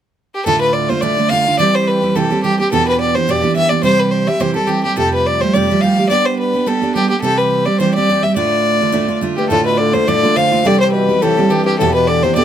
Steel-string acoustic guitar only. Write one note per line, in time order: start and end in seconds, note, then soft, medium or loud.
0.46 0.90 D2 medium
0.46 0.89 A2 medium
0.46 0.90 D3 medium
0.46 0.90 A3 medium
0.46 0.89 D4 medium
0.46 0.89 F4 medium
0.90 1.01 D3 soft
0.90 1.02 A3 soft
0.90 1.01 D4 soft
0.90 1.02 F4 soft
1.02 1.17 D2 medium
1.02 1.17 A2 medium
1.02 1.18 D3 medium
1.02 1.18 A3 medium
1.02 1.17 D4 medium
1.02 1.16 F4 medium
1.17 1.30 D3 soft
1.17 1.31 A3 soft
1.17 1.31 D4 soft
1.17 1.31 F4 soft
1.31 1.46 D3 medium
1.31 1.46 A3 medium
1.31 1.47 D4 medium
1.31 1.46 F4 medium
1.47 1.59 D3 soft
1.47 1.59 A3 soft
1.47 1.60 D4 soft
1.47 1.60 F4 soft
1.59 2.02 C3 medium
1.59 2.16 E3 medium
1.59 2.04 G3 medium
1.59 2.02 C4 medium
1.59 2.02 G4 medium
2.02 2.15 G3 soft
2.02 2.16 C4 soft
2.02 2.15 G4 soft
2.15 2.31 C3 medium
2.15 2.31 E3 medium
2.15 2.31 G3 medium
2.15 2.31 C4 medium
2.15 2.29 G4 medium
2.31 2.43 G3 soft
2.31 2.44 C4 soft
2.31 2.44 G4 medium
2.44 2.59 E3 medium
2.44 2.59 G3 medium
2.44 2.59 C4 medium
2.44 2.58 G4 medium
2.60 2.72 G3 soft
2.60 2.73 C4 soft
2.60 2.72 G4 soft
2.72 3.15 E2 medium
2.72 3.15 B2 medium
2.72 3.16 E3 medium
2.72 3.16 B3 medium
2.72 3.15 D4 medium
2.72 3.15 G4 medium
3.15 3.28 E3 soft
3.15 3.28 B3 soft
3.15 3.28 D4 soft
3.15 3.28 G4 soft
3.28 3.43 E2 medium
3.28 3.44 B2 medium
3.28 3.43 E3 medium
3.28 3.43 B3 medium
3.28 3.42 D4 medium
3.28 3.41 G4 medium
3.42 3.54 E3 soft
3.42 3.55 B3 soft
3.42 3.56 D4 soft
3.42 3.56 G4 soft
3.55 3.71 E3 medium
3.55 3.71 B3 medium
3.55 3.70 D4 medium
3.55 3.70 G4 medium
3.71 3.82 E3 soft
3.71 3.83 B3 soft
3.71 3.84 D4 soft
3.71 3.84 G4 soft
3.83 4.27 C3 medium
3.83 4.27 E3 medium
3.83 4.28 G3 medium
3.83 4.27 C4 medium
3.83 4.27 G4 medium
4.27 4.39 G3 soft
4.27 4.40 C4 soft
4.27 4.40 G4 soft
4.40 4.56 C3 medium
4.40 4.56 E3 medium
4.40 4.55 G3 medium
4.40 4.54 C4 medium
4.40 4.53 G4 medium
4.54 4.66 G3 soft
4.54 4.68 C4 soft
4.54 4.67 G4 medium
4.67 4.83 E3 medium
4.67 4.83 G3 medium
4.67 4.84 C4 medium
4.67 4.83 G4 medium
4.84 4.95 G3 soft
4.84 4.97 C4 soft
4.84 4.96 G4 soft
4.96 5.40 F2 medium
4.96 5.41 C3 medium
4.96 5.41 F3 medium
4.96 5.42 G3 medium
4.96 5.41 A3 medium
4.96 5.41 G4 medium
5.41 5.55 F3 soft
5.41 5.54 G3 soft
5.41 5.55 A3 soft
5.41 5.54 G4 soft
5.54 5.70 F2 medium
5.54 5.69 C3 medium
5.54 5.70 F3 medium
5.54 5.70 G3 medium
5.54 5.70 A3 medium
5.54 5.69 G4 medium
5.70 5.81 F3 soft
5.70 5.83 G3 soft
5.70 5.83 A3 medium
5.70 5.83 G4 medium
5.83 5.98 F3 medium
5.83 5.98 G3 medium
5.83 5.98 A3 medium
5.83 5.97 G4 medium
5.98 6.09 F3 soft
5.98 6.09 G3 soft
5.98 6.11 A3 soft
5.98 6.10 G4 soft
6.10 6.54 G3 medium
6.10 6.54 B3 medium
6.10 6.53 D4 medium
6.10 6.52 G4 medium
6.53 6.66 B3 soft
6.53 6.66 D4 soft
6.53 6.67 G4 soft
6.66 6.82 G3 medium
6.66 6.82 B3 medium
6.66 6.82 D4 medium
6.66 6.81 G4 medium
6.82 6.95 B3 soft
6.82 6.96 D4 soft
6.82 6.95 G4 soft
6.95 7.11 G3 medium
6.95 7.11 B3 medium
6.95 7.09 D4 medium
6.95 7.09 G4 medium
7.10 7.23 B3 soft
7.10 7.24 D4 soft
7.10 7.23 G4 soft
7.22 7.67 C3 medium
7.22 7.67 E3 medium
7.22 7.66 G3 medium
7.22 7.65 C4 medium
7.22 7.64 G4 medium
7.65 7.79 G3 soft
7.65 7.79 C4 soft
7.65 7.80 G4 soft
7.80 7.95 C3 medium
7.80 7.95 E3 medium
7.80 7.96 G3 medium
7.80 7.96 C4 medium
7.80 7.95 G4 medium
7.97 8.08 G3 soft
7.97 8.10 C4 soft
7.97 8.09 G4 medium
8.09 8.24 E3 medium
8.09 8.24 G3 medium
8.09 8.24 C4 medium
8.09 8.22 G4 medium
8.23 8.37 G3 soft
8.23 8.36 C4 soft
8.23 8.37 G4 soft
8.36 8.80 D2 medium
8.36 8.81 A2 medium
8.36 8.81 D3 medium
8.36 8.81 A3 medium
8.36 8.81 D4 medium
8.36 8.80 F4 medium
8.81 8.91 D3 soft
8.81 8.92 A3 soft
8.81 8.92 D4 soft
8.81 8.93 F4 soft
8.92 9.09 D2 medium
8.92 9.09 A2 medium
8.92 9.09 D3 medium
8.92 9.08 A3 medium
8.92 9.07 D4 medium
8.92 9.07 F4 medium
9.08 9.20 D3 soft
9.08 9.21 A3 soft
9.08 9.22 D4 soft
9.08 9.22 F4 soft
9.21 9.37 D3 medium
9.21 9.37 A3 medium
9.21 9.37 D4 medium
9.21 9.37 F4 medium
9.38 9.50 D3 soft
9.38 9.50 A3 soft
9.38 9.50 D4 soft
9.38 9.51 F4 soft
9.50 9.94 D2 medium
9.50 9.95 A2 medium
9.50 9.94 D3 medium
9.50 9.93 A3 medium
9.50 9.93 D4 medium
9.50 9.92 F4 medium
9.93 10.07 D3 soft
9.93 10.07 A3 soft
9.93 10.08 D4 soft
9.93 10.07 F4 soft
10.08 10.23 D2 medium
10.08 10.23 A2 medium
10.08 10.23 D3 medium
10.08 10.23 A3 medium
10.08 10.23 D4 medium
10.08 10.22 F4 medium
10.23 10.35 D3 soft
10.23 10.36 A3 soft
10.23 10.37 D4 soft
10.23 10.37 F4 medium
10.36 10.52 D3 medium
10.36 10.52 A3 medium
10.36 10.51 D4 medium
10.36 10.50 F4 medium
10.52 10.65 D3 soft
10.52 10.65 A3 soft
10.52 10.65 D4 soft
10.52 10.65 F4 soft
10.65 11.09 C3 medium
10.65 11.22 E3 medium
10.65 11.10 G3 medium
10.65 11.08 C4 medium
10.65 11.08 G4 medium
11.09 11.22 G3 soft
11.09 11.21 C4 soft
11.09 11.22 G4 soft
11.22 11.37 C3 medium
11.22 11.38 E3 medium
11.22 11.38 G3 medium
11.22 11.37 C4 medium
11.22 11.36 G4 medium
11.37 11.49 G3 soft
11.37 11.51 C4 soft
11.37 11.51 G4 soft
11.50 11.80 E3 medium
11.50 11.81 G3 medium
11.50 11.80 C4 medium
11.50 11.81 G4 medium
11.81 12.24 E2 medium
11.81 12.24 B2 medium
11.81 12.23 E3 medium
11.81 12.23 B3 medium
11.81 12.23 D4 medium
11.81 12.22 G4 medium
12.23 12.35 E3 soft
12.23 12.35 B3 soft
12.23 12.35 D4 soft
12.23 12.36 G4 soft
12.36 12.45 E2 medium
12.36 12.45 B2 medium
12.36 12.45 E3 medium
12.36 12.45 B3 medium
12.36 12.45 D4 medium
12.36 12.45 G4 medium